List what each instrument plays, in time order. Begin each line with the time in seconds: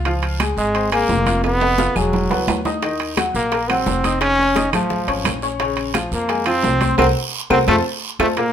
Already playing: upright bass C#2
0.05 grand piano F3 F4 F5, high conga, high timbale, long guiro
0.23 high conga, high timbale
0.40 grand piano G#3 G#4 G#5, high conga, high timbale, short guiro, claves
0.57 upright bass G#1, trombone G#3, high conga, short guiro
0.75 grand piano C4 C5 C6, high conga, high timbale, long guiro
0.92 grand piano G#3 G#4 G#5, trombone A#3, high conga, high timbale, claves
1.09 upright bass F1, high conga, low timbale, short guiro
1.26 grand piano F4 F5 F6, high conga, high timbale, short guiro
1.44 trombone B3, high conga, high timbale, long guiro, claves
1.61 grand piano B3 B4 B5, high conga, high timbale
1.78 grand piano F4 F5 F6, high conga, high timbale, short guiro
1.96 upright bass E1, trombone F#3, grand piano G#3 G#4 G#5, high conga, low conga, short guiro, claves
2.13 high conga, low conga, low timbale, long guiro
2.30 upright bass C#2, grand piano B3 B4 B5, high conga, low timbale
2.48 upright bass D#2, high conga, low timbale, short guiro, claves
2.65 grand piano D#4 D#5 D#6, high conga, low timbale, short guiro
2.82 grand piano D#3 D#4 D#5, high bongo, high conga, high timbale, long guiro
3.00 high conga, high timbale
3.17 grand piano F#3 F#4 F#5, high bongo, high conga, high timbale, short guiro, claves
3.34 upright bass A#1, trombone A#3, high bongo, high conga, short guiro
3.52 grand piano A#3 A#4 A#5, high bongo, high conga, high timbale, long guiro
3.69 grand piano F#3 F#4 F#5, trombone C4, high bongo, high conga, high timbale, claves
3.86 upright bass F1, high bongo, low bongo, high conga, low timbale, short guiro
4.04 grand piano D#4 D#5 D#6, high bongo, high conga, high timbale, short guiro
4.21 trombone C#4, high bongo, high conga, high timbale, long guiro, claves
4.39 grand piano C#4 C#5 C#6, high conga
4.55 grand piano D#4 D#5 D#6, high bongo, high conga, high timbale, short guiro
4.73 upright bass A1, trombone F3, grand piano A3 A4 A5, high bongo, high conga, low conga, high timbale, short guiro, claves
4.90 high bongo, high conga, low conga, long guiro
5.08 upright bass G#1, grand piano C#4 C#5 C#6, high bongo, high conga, high timbale
5.25 upright bass A#1, high bongo, low bongo, high conga, high timbale, low timbale, short guiro, claves
5.42 grand piano C#4 C#5 C#6, high bongo, short guiro
5.60 grand piano C#3 C#4 C#5, high bongo, high conga, high timbale, long guiro
5.77 high conga, high timbale
5.94 grand piano F3 F4 F5, high bongo, high conga, high timbale, short guiro, claves
6.12 upright bass F2, trombone A#3, high bongo, high conga, short guiro
6.29 grand piano G#3 G#4 G#5, high bongo, high conga, high timbale, long guiro
6.46 grand piano F3 F4 F5, trombone C4, high bongo, high conga, high timbale, claves
6.63 upright bass C2, high bongo, low bongo, high conga, low timbale, short guiro
6.81 grand piano C4 C5 C6, high bongo, high conga, high timbale, short guiro
6.98 upright bass C2, trombone C4, grand piano F#4 A#4 C5, high bongo, high conga, high timbale, long guiro, claves
7.50 upright bass C2, trombone C4, grand piano F#4 A#4 C5, high bongo, high conga, high timbale, long guiro, claves
7.67 upright bass F2, trombone A3, grand piano F4 A4 C5, high bongo, high conga, high timbale, long guiro, claves
8.19 upright bass F2, trombone A3, grand piano F4 A4 C5, high bongo, high conga, high timbale, long guiro, claves
8.37 grand piano A#2 A#3 A#4, trombone A#3, high bongo, high conga, high timbale, long guiro